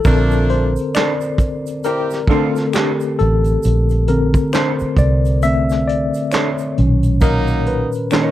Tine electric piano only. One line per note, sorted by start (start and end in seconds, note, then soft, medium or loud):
0.05 0.68 D3 medium
0.05 0.68 C4 medium
0.05 0.68 A4 soft
0.05 0.46 A#4 medium
0.50 0.96 C5 loud
0.95 1.80 D5 loud
1.85 2.30 A#4 medium
2.30 2.70 D3 soft
2.30 2.70 A3 soft
2.30 2.71 C4 medium
2.30 2.75 A4 medium
2.74 3.20 G4 medium
3.19 4.08 A4 loud
4.08 5.38 D3 medium
4.08 5.39 C4 medium
4.08 5.39 A4 medium
4.08 4.54 A#4 medium
4.53 4.99 C5 loud
4.99 5.40 D5 loud
5.43 5.83 D3 soft
5.43 5.84 A3 soft
5.43 5.84 C4 medium
5.43 5.84 E5 loud
5.88 6.33 D5 medium
6.33 6.99 C#5 medium
6.78 8.31 A#2 medium
6.78 8.11 D#3 medium
6.78 8.12 C#4 medium
7.22 7.63 A#4 medium
7.67 8.08 B4 medium
8.12 8.31 D#3 medium
8.12 8.31 A#3 soft
8.12 8.31 C#4 medium
8.12 8.31 C#5 medium